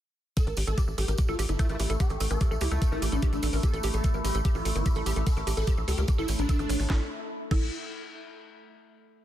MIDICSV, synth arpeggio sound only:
0, 0, Header, 1, 2, 480
1, 0, Start_track
1, 0, Tempo, 408163
1, 433, Time_signature, 4, 2, 24, 8
1, 10877, End_track
2, 0, Start_track
2, 0, Title_t, "Synth arpeggio sound"
2, 0, Program_c, 0, 84
2, 433, Note_on_c, 0, 69, 82
2, 484, Note_off_c, 0, 69, 0
2, 553, Note_on_c, 0, 70, 77
2, 604, Note_off_c, 0, 70, 0
2, 673, Note_on_c, 0, 67, 76
2, 724, Note_off_c, 0, 67, 0
2, 793, Note_on_c, 0, 69, 100
2, 844, Note_off_c, 0, 69, 0
2, 913, Note_on_c, 0, 67, 98
2, 964, Note_off_c, 0, 67, 0
2, 1033, Note_on_c, 0, 69, 76
2, 1063, Note_off_c, 0, 69, 0
2, 1153, Note_on_c, 0, 69, 74
2, 1204, Note_off_c, 0, 69, 0
2, 1273, Note_on_c, 0, 70, 76
2, 1324, Note_off_c, 0, 70, 0
2, 1393, Note_on_c, 0, 67, 84
2, 1444, Note_off_c, 0, 67, 0
2, 1513, Note_on_c, 0, 69, 107
2, 1564, Note_off_c, 0, 69, 0
2, 1633, Note_on_c, 0, 67, 103
2, 1684, Note_off_c, 0, 67, 0
2, 1753, Note_on_c, 0, 69, 73
2, 1784, Note_off_c, 0, 69, 0
2, 1873, Note_on_c, 0, 69, 86
2, 1924, Note_off_c, 0, 69, 0
2, 1993, Note_on_c, 0, 70, 79
2, 2044, Note_off_c, 0, 70, 0
2, 2114, Note_on_c, 0, 67, 77
2, 2164, Note_off_c, 0, 67, 0
2, 2233, Note_on_c, 0, 69, 102
2, 2284, Note_off_c, 0, 69, 0
2, 2354, Note_on_c, 0, 67, 98
2, 2404, Note_off_c, 0, 67, 0
2, 2473, Note_on_c, 0, 69, 81
2, 2503, Note_off_c, 0, 69, 0
2, 2593, Note_on_c, 0, 69, 74
2, 2644, Note_off_c, 0, 69, 0
2, 2713, Note_on_c, 0, 70, 76
2, 2764, Note_off_c, 0, 70, 0
2, 2833, Note_on_c, 0, 67, 83
2, 2884, Note_off_c, 0, 67, 0
2, 2953, Note_on_c, 0, 69, 98
2, 3004, Note_off_c, 0, 69, 0
2, 3073, Note_on_c, 0, 67, 96
2, 3124, Note_off_c, 0, 67, 0
2, 3193, Note_on_c, 0, 69, 79
2, 3224, Note_off_c, 0, 69, 0
2, 3313, Note_on_c, 0, 69, 85
2, 3364, Note_off_c, 0, 69, 0
2, 3433, Note_on_c, 0, 70, 80
2, 3484, Note_off_c, 0, 70, 0
2, 3553, Note_on_c, 0, 67, 76
2, 3604, Note_off_c, 0, 67, 0
2, 3673, Note_on_c, 0, 69, 98
2, 3723, Note_off_c, 0, 69, 0
2, 3792, Note_on_c, 0, 67, 100
2, 3843, Note_off_c, 0, 67, 0
2, 3913, Note_on_c, 0, 69, 78
2, 3943, Note_off_c, 0, 69, 0
2, 4032, Note_on_c, 0, 69, 78
2, 4083, Note_off_c, 0, 69, 0
2, 4153, Note_on_c, 0, 70, 81
2, 4203, Note_off_c, 0, 70, 0
2, 4273, Note_on_c, 0, 67, 80
2, 4323, Note_off_c, 0, 67, 0
2, 4392, Note_on_c, 0, 69, 107
2, 4443, Note_off_c, 0, 69, 0
2, 4513, Note_on_c, 0, 67, 101
2, 4563, Note_off_c, 0, 67, 0
2, 4633, Note_on_c, 0, 69, 77
2, 4663, Note_off_c, 0, 69, 0
2, 4753, Note_on_c, 0, 69, 85
2, 4803, Note_off_c, 0, 69, 0
2, 4873, Note_on_c, 0, 70, 78
2, 4923, Note_off_c, 0, 70, 0
2, 4993, Note_on_c, 0, 67, 76
2, 5044, Note_off_c, 0, 67, 0
2, 5113, Note_on_c, 0, 69, 100
2, 5164, Note_off_c, 0, 69, 0
2, 5232, Note_on_c, 0, 67, 103
2, 5283, Note_off_c, 0, 67, 0
2, 5352, Note_on_c, 0, 69, 79
2, 5383, Note_off_c, 0, 69, 0
2, 5473, Note_on_c, 0, 69, 73
2, 5524, Note_off_c, 0, 69, 0
2, 5592, Note_on_c, 0, 70, 74
2, 5643, Note_off_c, 0, 70, 0
2, 5713, Note_on_c, 0, 67, 86
2, 5763, Note_off_c, 0, 67, 0
2, 5832, Note_on_c, 0, 69, 99
2, 5883, Note_off_c, 0, 69, 0
2, 5952, Note_on_c, 0, 67, 100
2, 6003, Note_off_c, 0, 67, 0
2, 6072, Note_on_c, 0, 69, 81
2, 6103, Note_off_c, 0, 69, 0
2, 6192, Note_on_c, 0, 69, 81
2, 6243, Note_off_c, 0, 69, 0
2, 6313, Note_on_c, 0, 70, 79
2, 6363, Note_off_c, 0, 70, 0
2, 6433, Note_on_c, 0, 67, 80
2, 6484, Note_off_c, 0, 67, 0
2, 6553, Note_on_c, 0, 69, 101
2, 6603, Note_off_c, 0, 69, 0
2, 6673, Note_on_c, 0, 67, 104
2, 6724, Note_off_c, 0, 67, 0
2, 6792, Note_on_c, 0, 69, 78
2, 6823, Note_off_c, 0, 69, 0
2, 6913, Note_on_c, 0, 69, 80
2, 6963, Note_off_c, 0, 69, 0
2, 7032, Note_on_c, 0, 70, 77
2, 7083, Note_off_c, 0, 70, 0
2, 7152, Note_on_c, 0, 67, 82
2, 7203, Note_off_c, 0, 67, 0
2, 7272, Note_on_c, 0, 69, 108
2, 7323, Note_off_c, 0, 69, 0
2, 7392, Note_on_c, 0, 73, 76
2, 7423, Note_off_c, 0, 73, 0
2, 7512, Note_on_c, 0, 82, 99
2, 7543, Note_off_c, 0, 82, 0
2, 7633, Note_on_c, 0, 69, 85
2, 7709, Note_off_c, 0, 69, 0
2, 7753, Note_on_c, 0, 69, 76
2, 7804, Note_off_c, 0, 69, 0
2, 7873, Note_on_c, 0, 73, 79
2, 7903, Note_off_c, 0, 73, 0
2, 7993, Note_on_c, 0, 73, 79
2, 8023, Note_off_c, 0, 73, 0
2, 8113, Note_on_c, 0, 69, 94
2, 8247, Note_off_c, 0, 69, 0
2, 8833, Note_on_c, 0, 69, 92
2, 9056, Note_off_c, 0, 69, 0
2, 10877, End_track
0, 0, End_of_file